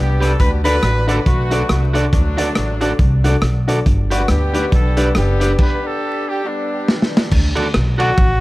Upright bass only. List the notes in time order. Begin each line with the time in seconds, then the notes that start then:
Already playing: C2
0.40 D2
0.83 A1
1.26 B1
1.69 C2
2.13 D2
2.57 A1
2.99 C2
3.42 B1
3.86 G1
4.29 D2
4.72 B1
5.16 F#1
7.32 D2
7.75 B1
8.18 A1